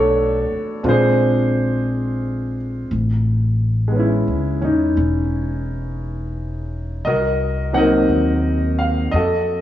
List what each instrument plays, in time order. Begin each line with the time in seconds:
Already playing: upright bass B1, grand piano A3 B3 D4 F#4 A4 C#5 D5
0.52 muted upright bass stroke
0.83 upright bass A#1, grand piano G#3 C4 D4 F4
0.89 grand piano G#4 C5
2.91 upright bass A1
3.88 grand piano G#3 B3
3.96 grand piano C#4 E4
4.28 upright bass C#2
4.62 upright bass E2, grand piano C#4 D#4
4.97 upright bass E1
7.05 upright bass C2, grand piano F#4 A#4 D#5
7.73 grand piano F#3 A#3 C4 D#4 F#5
7.78 grand piano A#4 D#5
8.09 upright bass D#2
8.79 grand piano F5
9.11 upright bass F2, grand piano F#4 D#5
9.15 grand piano A4